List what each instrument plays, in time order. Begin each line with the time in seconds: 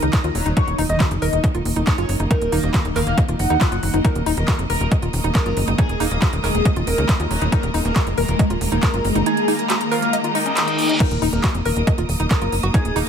Already playing: synth drone D#3 D#4, string section A#3 A#4 D#5 D#6, analog synth lead A#4
0.02 analog synth bass C#2, synth arpeggio sound D#4, closed hi-hat
0.13 kick, clap, closed hi-hat
0.24 analog synth bass D#2, synth arpeggio sound F4, closed hi-hat
0.35 analog synth bass D#1, wobble bass F#3, open hi-hat
0.46 analog synth bass D#1, synth arpeggio sound D#4, closed hi-hat
0.57 synth arpeggio sound D#4, analog synth lead C#5, kick, closed hi-hat
0.68 analog synth bass D#1, closed hi-hat
0.78 analog synth bass D#1, synth arpeggio sound D#4, open hi-hat
0.89 analog synth bass D#1, analog synth lead D#5, closed hi-hat
1.00 synth arpeggio sound F#4, kick, clap, closed hi-hat
1.11 analog synth bass F1, closed hi-hat
1.22 analog synth bass D#1, synth arpeggio sound A#4, analog synth lead D#5, open hi-hat
1.33 analog synth bass D#1, closed hi-hat
1.44 synth arpeggio sound D#5, kick, closed hi-hat
1.55 analog synth bass D#1, synth arpeggio sound F4, closed hi-hat
1.65 analog synth bass D#1, open hi-hat
1.76 analog synth bass D#1, synth arpeggio sound D#4, closed hi-hat
1.87 analog synth lead C#5, kick, clap, closed hi-hat
1.98 analog synth bass F#1, synth arpeggio sound F4, closed hi-hat
2.09 analog synth bass F#1, open hi-hat
2.20 analog synth bass F#1, synth arpeggio sound D#4, closed hi-hat
2.31 synth arpeggio sound D#4, analog synth lead A#4, kick, closed hi-hat
2.42 analog synth bass D#1, closed hi-hat
2.52 analog synth bass D#1, wobble bass A#3, synth arpeggio sound D#4, open hi-hat
2.63 analog synth bass D#1, closed hi-hat
2.74 synth arpeggio sound F#4, kick, clap, closed hi-hat
2.85 analog synth bass D#1, closed hi-hat
2.96 analog synth bass D#1, synth arpeggio sound A#4, analog synth lead F5, clap, open hi-hat
3.07 analog synth bass D#1, wobble bass A#3, closed hi-hat
3.18 wobble bass A#3, synth arpeggio sound D#5, kick, closed hi-hat
3.28 analog synth bass D#1, synth arpeggio sound F4, closed hi-hat
3.39 analog synth bass F1, analog synth lead F#5, open hi-hat
3.50 analog synth bass D#2, synth arpeggio sound D#4, closed hi-hat
3.61 synth arpeggio sound F4, kick, clap, closed hi-hat
3.72 analog synth bass F#1, synth arpeggio sound F4, closed hi-hat
3.83 analog synth bass F#1, open hi-hat
3.94 analog synth bass F#1, synth arpeggio sound D#4, closed hi-hat
4.05 synth drone G#3, synth arpeggio sound D#4, analog synth lead A#4, kick, closed hi-hat
4.15 analog synth bass D#1, closed hi-hat
4.26 analog synth bass D#1, synth arpeggio sound D#4, open hi-hat
4.37 analog synth bass D#1, analog synth lead A#4, string section D#6, closed hi-hat
4.48 synth arpeggio sound F#4, kick, clap, closed hi-hat
4.59 analog synth bass F1, closed hi-hat
4.70 analog synth bass D#1, synth arpeggio sound A#4, analog synth lead A#4, open hi-hat
4.81 analog synth bass D#1, closed hi-hat
4.91 synth arpeggio sound D#5, kick, closed hi-hat
5.02 analog synth bass D#1, synth arpeggio sound F4, closed hi-hat
5.13 analog synth bass D#1, open hi-hat
5.24 analog synth bass D#1, synth arpeggio sound D#4, closed hi-hat
5.35 analog synth lead A#4, kick, clap, closed hi-hat
5.46 analog synth bass F#1, synth arpeggio sound F4, closed hi-hat
5.57 analog synth bass F#1, open hi-hat
5.68 analog synth bass F#1, synth arpeggio sound D#4, closed hi-hat
5.78 synth arpeggio sound D#4, analog synth lead G#4, kick, closed hi-hat
5.89 analog synth bass D#1, closed hi-hat
6.00 analog synth bass D#1, wobble bass A#3, synth arpeggio sound D#4, open hi-hat
6.11 analog synth bass D#1, closed hi-hat
6.22 synth arpeggio sound F#4, kick, clap, closed hi-hat
6.33 analog synth bass D#1, closed hi-hat
6.44 analog synth bass D#1, analog synth lead G#4, synth arpeggio sound A#4, clap, open hi-hat
6.55 analog synth bass D#1, closed hi-hat
6.65 synth arpeggio sound D#5, kick, closed hi-hat
6.76 analog synth bass D#1, synth arpeggio sound F4, closed hi-hat
6.87 analog synth bass D#1, analog synth lead A#4, open hi-hat
6.98 analog synth bass C#2, synth arpeggio sound D#4, closed hi-hat
7.09 kick, clap, closed hi-hat
7.20 analog synth bass D#2, synth arpeggio sound F4, closed hi-hat
7.31 analog synth bass D#1, wobble bass F#3, open hi-hat
7.41 analog synth bass D#1, synth arpeggio sound D#4, closed hi-hat
7.52 synth arpeggio sound D#4, analog synth lead A#4, kick, closed hi-hat
7.63 analog synth bass D#1, closed hi-hat
7.74 analog synth bass D#1, synth arpeggio sound D#4, open hi-hat
7.85 analog synth bass D#1, analog synth lead A#4, string section A#5, closed hi-hat
7.96 synth arpeggio sound F#4, kick, clap, closed hi-hat
8.07 analog synth bass F1, closed hi-hat
8.18 analog synth bass D#1, analog synth lead A#4, synth arpeggio sound A#4, open hi-hat
8.28 analog synth bass D#1, closed hi-hat
8.39 synth arpeggio sound D#5, kick, closed hi-hat
8.50 analog synth bass D#1, synth arpeggio sound F4, closed hi-hat
8.61 analog synth bass D#1, open hi-hat
8.72 analog synth bass D#1, synth arpeggio sound D#4, closed hi-hat
8.83 analog synth lead A#4, kick, clap, closed hi-hat
8.94 analog synth bass F#1, synth arpeggio sound F4, closed hi-hat
9.05 analog synth bass F#1, open hi-hat
9.15 analog synth bass F#1, synth arpeggio sound D#4, closed hi-hat
9.26 synth arpeggio sound D#4, analog synth lead G#4, closed hi-hat
9.37 closed hi-hat
9.48 wobble bass A#3, synth arpeggio sound D#4, open hi-hat
9.59 closed hi-hat
9.70 synth arpeggio sound F#4, clap, closed hi-hat
9.81 closed hi-hat
9.91 analog synth lead F4, synth arpeggio sound A#4, clap, open hi-hat
10.02 wobble bass A#3, closed hi-hat
10.13 wobble bass A#3, synth arpeggio sound D#5, closed hi-hat, reverse cymbal
10.24 synth arpeggio sound F4, closed hi-hat
10.35 synth arpeggio sound D#4, analog synth lead D#4, open hi-hat
10.46 synth arpeggio sound C#4, closed hi-hat
10.57 clap, closed hi-hat
10.68 synth arpeggio sound D#5, closed hi-hat
10.79 open hi-hat
10.89 synth arpeggio sound D#5, closed hi-hat
11.00 synth arpeggio sound D#4, synth drone D#4, analog synth lead A#4, kick, closed hi-hat, crash
11.11 analog synth bass D#1, closed hi-hat
11.22 analog synth bass D#1, synth arpeggio sound D#4, open hi-hat
11.33 analog synth bass D#1, analog synth lead A#4, string section D#6, closed hi-hat
11.44 synth arpeggio sound F#4, kick, clap, closed hi-hat
11.55 analog synth bass F1, closed hi-hat
11.65 analog synth bass D#1, synth arpeggio sound A#4, analog synth lead A#4, open hi-hat
11.76 analog synth bass D#1, closed hi-hat
11.87 synth arpeggio sound D#5, kick, closed hi-hat
11.98 analog synth bass D#1, synth arpeggio sound F4, closed hi-hat
12.09 analog synth bass D#1, open hi-hat
12.20 analog synth bass D#1, synth arpeggio sound D#4, closed hi-hat
12.31 analog synth lead A#4, kick, clap, closed hi-hat
12.41 analog synth bass F#1, synth arpeggio sound F4, closed hi-hat
12.52 analog synth bass F#1, open hi-hat
12.63 analog synth bass F#1, synth arpeggio sound F#4, closed hi-hat
12.74 synth arpeggio sound D#4, analog synth lead G#4, kick, closed hi-hat
12.85 analog synth bass D#1, closed hi-hat
12.96 analog synth bass D#1, wobble bass A#3, synth arpeggio sound D#4, open hi-hat